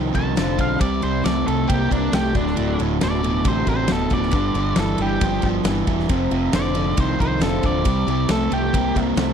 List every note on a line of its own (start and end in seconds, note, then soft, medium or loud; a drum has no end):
0.00 0.12 C2 medium
0.00 0.11 F2 medium
0.00 0.12 D#3 medium
0.00 0.13 F3 medium
0.00 0.13 A3 medium
0.00 0.13 C4 medium
0.00 0.11 F4 medium
0.12 0.34 C2 medium
0.12 0.33 F2 medium
0.12 0.34 D#3 medium
0.12 0.35 F3 soft
0.12 0.35 A3 soft
0.12 0.35 C4 medium
0.12 0.35 F4 medium
0.12 0.57 A5 loud
0.12 kick medium
0.12 ride medium
0.36 0.57 F1 medium
0.36 0.80 F2 medium
0.36 0.56 F2 medium
0.36 0.77 C3 medium
0.36 0.56 D3 loud
0.36 0.78 F3 medium
0.36 0.79 A3 medium
0.36 0.78 C4 medium
0.36 0.80 F4 medium
0.36 snare medium
0.36 ride medium
0.58 0.78 B1 medium
0.58 0.78 F2 medium
0.58 0.78 D3 medium
0.58 0.80 F5 medium
0.58 kick medium
0.58 ride medium
0.78 1.00 C2 medium
0.78 1.01 C3 medium
0.78 1.00 C3 medium
0.78 1.02 E3 medium
0.78 1.02 G3 medium
0.78 1.01 G3 medium
0.78 1.01 C4 medium
0.78 1.00 E4 medium
0.78 1.02 D5 medium
0.78 kick loud
0.78 ride loud
1.01 1.23 C2 medium
1.01 1.22 C3 medium
1.01 1.22 G3 medium
1.01 1.22 G3 soft
1.01 1.23 C4 soft
1.01 1.23 E4 medium
1.01 1.24 C5 medium
1.01 ride medium
1.23 1.45 C2 medium
1.23 1.46 C3 medium
1.23 1.44 C3 medium
1.23 1.46 E3 medium
1.23 1.46 G3 medium
1.23 1.44 A3 medium
1.23 1.45 C4 medium
1.23 1.44 E4 medium
1.23 1.46 D5 medium
1.23 snare medium
1.23 ride medium
1.46 1.67 C2 medium
1.46 1.66 C3 medium
1.46 1.67 G3 soft
1.46 1.67 A3 medium
1.46 1.68 C4 soft
1.46 1.68 E4 soft
1.46 1.68 A4 medium
1.46 ride medium
1.68 1.89 C2 medium
1.68 1.88 C3 medium
1.68 1.90 E3 medium
1.68 1.90 G3 medium
1.68 1.88 A#3 medium
1.68 1.89 C4 medium
1.68 1.88 E4 medium
1.68 1.90 G4 medium
1.68 kick loud
1.68 ride loud
1.89 2.11 C2 medium
1.89 2.10 C3 medium
1.89 2.12 G3 soft
1.89 2.11 A#3 medium
1.89 2.12 C4 soft
1.89 2.13 D4 medium
1.89 2.12 E4 medium
1.89 kick medium
1.89 ride medium
2.12 2.32 C2 medium
2.12 2.32 C3 medium
2.12 2.34 C3 medium
2.12 2.34 E3 medium
2.12 2.33 G3 medium
2.12 2.32 A3 medium
2.12 2.33 C4 medium
2.12 2.32 E4 medium
2.12 2.35 G4 medium
2.12 snare loud
2.12 ride medium
2.33 2.55 D1 medium
2.33 2.55 D2 medium
2.33 2.55 A2 medium
2.33 2.79 D3 medium
2.33 2.78 A3 soft
2.33 2.80 D4 medium
2.33 2.78 D4 medium
2.33 2.78 F#4 medium
2.33 kick loud
2.33 ride medium
2.47 snare soft
2.56 2.77 D1 medium
2.56 2.76 D2 medium
2.56 2.77 A2 medium
2.56 ride medium
2.78 2.99 D1 medium
2.78 2.98 D2 medium
2.78 2.99 A2 medium
2.78 3.00 A3 soft
2.78 3.00 D4 soft
2.78 3.01 F#4 medium
2.78 ride medium
3.00 3.41 D1 medium
3.00 3.21 D2 medium
3.00 3.21 B2 medium
3.00 3.23 D3 medium
3.00 3.23 A3 medium
3.00 3.22 D4 medium
3.00 3.20 F#4 medium
3.00 3.45 D5 medium
3.00 snare loud
3.00 ride medium
3.22 3.43 D2 medium
3.22 3.43 B2 medium
3.22 3.42 A3 soft
3.22 3.43 D4 soft
3.22 3.44 F#4 soft
3.22 ride medium
3.43 3.64 A1 medium
3.43 3.64 D2 medium
3.43 3.65 C3 medium
3.43 3.66 D3 medium
3.43 3.66 A3 medium
3.43 3.66 D4 medium
3.43 3.64 F#4 medium
3.43 kick loud
3.43 ride medium
3.48 3.68 C5 medium
3.65 3.87 A1 medium
3.65 3.87 D2 medium
3.65 3.87 C3 medium
3.65 3.87 A3 soft
3.65 3.87 D4 soft
3.65 3.88 F#4 medium
3.65 kick medium
3.65 ride medium
3.70 3.90 C5 medium
3.87 4.09 D1 medium
3.87 4.09 D2 medium
3.87 4.09 B2 medium
3.87 4.32 D3 medium
3.87 4.33 A3 medium
3.87 4.33 D4 medium
3.87 4.33 F#4 medium
3.87 snare loud
3.87 ride medium
3.92 4.12 A4 medium
4.10 4.31 D1 medium
4.10 4.31 D2 medium
4.10 4.31 B2 medium
4.10 4.77 D5 medium
4.10 kick medium
4.10 ride medium
4.22 snare soft
4.31 4.53 G1 medium
4.31 4.55 G2 medium
4.31 4.53 G2 medium
4.31 4.55 D3 medium
4.31 4.53 D3 medium
4.31 4.56 G3 medium
4.31 4.56 B3 medium
4.31 4.55 D4 medium
4.31 4.55 G4 medium
4.31 kick loud
4.31 ride medium
4.54 4.74 G1 medium
4.54 4.75 G2 medium
4.54 4.75 D3 medium
4.54 4.76 G3 soft
4.54 4.76 B3 soft
4.54 4.78 D4 medium
4.54 4.78 G4 medium
4.54 ride medium
4.76 4.97 G1 medium
4.76 4.97 G2 medium
4.76 4.99 G2 medium
4.76 4.99 D3 medium
4.76 4.97 E3 medium
4.76 4.99 G3 medium
4.76 4.98 B3 medium
4.76 4.97 D4 medium
4.76 4.96 G4 medium
4.76 5.00 A4 medium
4.76 snare loud
4.76 ride medium
4.98 5.19 G1 medium
4.98 5.19 G2 medium
4.98 5.20 E3 medium
4.98 5.19 G3 soft
4.98 5.20 B3 soft
4.98 5.20 D4 soft
4.98 5.21 G4 soft
4.98 ride medium
5.02 5.44 G4 medium
5.21 5.41 G1 medium
5.21 5.42 G2 medium
5.21 5.42 F3 medium
5.21 5.43 G3 medium
5.21 5.43 B3 medium
5.21 5.42 D4 medium
5.21 5.42 G4 medium
5.21 kick loud
5.21 ride loud
5.42 5.63 G1 medium
5.42 5.63 G2 medium
5.42 5.64 F3 medium
5.42 5.63 G3 soft
5.42 5.64 B3 soft
5.42 5.64 D4 medium
5.42 5.65 G4 medium
5.42 kick medium
5.42 ride medium
5.63 5.84 G1 medium
5.63 6.08 G2 medium
5.63 5.85 G2 medium
5.63 6.08 D3 medium
5.63 5.85 E3 medium
5.63 6.09 G3 medium
5.63 6.09 B3 medium
5.63 6.09 D4 medium
5.63 6.10 G4 medium
5.63 snare loud
5.63 ride medium
5.87 6.07 E1 medium
5.87 6.07 G2 medium
5.87 6.07 E3 medium
5.87 kick medium
5.87 ride medium
5.99 snare soft
6.09 6.29 F1 medium
6.09 6.31 F2 medium
6.09 6.29 F2 medium
6.09 6.31 C3 medium
6.09 6.30 C3 medium
6.09 6.31 F3 medium
6.09 6.31 A3 medium
6.09 6.29 C4 medium
6.09 6.29 F4 medium
6.09 kick loud
6.09 ride medium
6.30 6.51 F1 medium
6.30 6.51 F2 medium
6.30 6.52 C3 medium
6.30 6.51 F3 medium
6.30 6.51 A3 soft
6.30 6.52 C4 medium
6.30 6.52 F4 medium
6.30 ride medium
6.51 6.92 F1 medium
6.51 6.75 F2 medium
6.51 6.74 F2 medium
6.51 6.75 C3 medium
6.51 6.74 D3 medium
6.51 6.74 F3 medium
6.51 6.75 A3 medium
6.51 6.73 C4 medium
6.51 6.72 F4 medium
6.51 6.97 D5 loud
6.51 snare loud
6.51 ride medium
6.73 6.96 F2 medium
6.73 6.96 D3 medium
6.73 6.94 F3 soft
6.73 6.95 A3 soft
6.73 6.97 C4 soft
6.73 6.97 F4 soft
6.73 ride medium
6.96 7.17 C2 medium
6.96 7.17 F2 medium
6.96 7.17 D#3 medium
6.96 7.19 F3 medium
6.96 7.19 A3 medium
6.96 7.19 C4 medium
6.96 7.17 F4 medium
6.96 kick loud
6.96 ride loud
7.00 7.20 C5 medium
7.18 7.40 C2 medium
7.18 7.39 F2 medium
7.18 7.39 D#3 medium
7.18 7.39 F3 soft
7.18 7.39 A3 medium
7.18 7.39 C4 soft
7.18 7.39 F4 medium
7.18 7.42 C5 medium
7.18 kick medium
7.18 ride medium
7.39 7.61 F1 medium
7.39 7.84 F2 medium
7.39 7.61 F2 medium
7.39 7.83 C3 medium
7.39 7.62 D3 medium
7.39 7.84 F3 medium
7.39 7.85 A3 medium
7.39 7.84 C4 medium
7.39 7.85 F4 medium
7.39 snare loud
7.39 ride medium
7.43 7.64 A4 medium
7.63 7.83 D1 medium
7.63 7.83 F2 medium
7.63 7.84 D3 medium
7.63 8.29 D5 medium
7.63 kick medium
7.63 ride medium
7.84 8.06 C2 medium
7.84 8.05 C3 medium
7.84 8.07 C3 medium
7.84 8.07 E3 medium
7.84 8.05 G3 medium
7.84 8.08 G3 medium
7.84 8.07 C4 medium
7.84 8.05 E4 medium
7.84 kick loud
7.84 ride loud
8.06 8.27 C2 medium
8.06 8.27 C3 medium
8.06 8.27 G3 medium
8.06 8.27 G3 soft
8.06 8.28 C4 medium
8.06 8.29 E4 medium
8.06 ride medium
8.28 8.49 C2 medium
8.28 8.51 C3 medium
8.28 8.48 C3 medium
8.28 8.51 E3 medium
8.28 8.51 G3 medium
8.28 8.49 A3 loud
8.28 8.50 C4 medium
8.28 8.49 E4 medium
8.28 8.52 A4 medium
8.28 snare loud
8.28 ride medium
8.50 8.71 C2 medium
8.50 8.71 C3 medium
8.50 8.71 A3 medium
8.50 8.74 C4 soft
8.50 8.73 E4 soft
8.50 8.95 G4 loud
8.50 ride medium
8.73 8.94 C2 medium
8.73 8.94 C3 medium
8.73 8.96 E3 medium
8.73 8.96 G3 medium
8.73 8.94 A#3 medium
8.73 8.96 C4 medium
8.73 8.94 E4 medium
8.73 kick loud
8.73 ride medium
8.95 9.16 C2 medium
8.95 9.16 C3 medium
8.95 9.15 G3 soft
8.95 9.15 A#3 medium
8.95 9.16 C4 soft
8.95 9.16 E4 soft
8.95 kick medium
8.95 ride medium
9.16 9.33 C2 medium
9.16 9.33 C3 medium
9.16 9.33 E3 medium
9.16 9.33 G3 medium
9.16 9.33 A3 medium
9.16 9.33 C4 medium
9.16 9.33 E4 loud
9.16 snare loud
9.16 ride loud